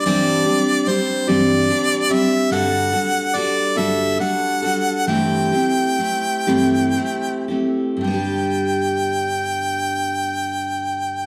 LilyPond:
<<
  \new Staff \with { instrumentName = "Harmonica" } { \time 6/8 \key g \major \tempo 4. = 45 d''4 c''8 d''4 e''8 | fis''4 d''8 e''8 fis''4 | g''2~ g''8 r8 | g''2. | }
  \new Staff \with { instrumentName = "Steel-string acoustic guitar" } { \time 6/8 \key g \major <g, e g c' d' g'>8 <g c' d' g'>8 <g c' d' g'>8 <g, e g c' d' g'>8 <g c' d' g'>8 <g c' d' g'>8 | <g, d g d' fis' a'>8 <g d' fis' a'>8 <g d' fis' a'>8 <g, d g d' fis' a'>8 <g d' fis' a'>8 <g d' fis' a'>8 | <g, e a c' e' g'>8 <a c' e' g'>8 <a c' e' g'>8 <g, e a c' e' g'>8 <a c' e' g'>8 <a c' e' g'>8 | <g, d g b d' g'>2. | }
>>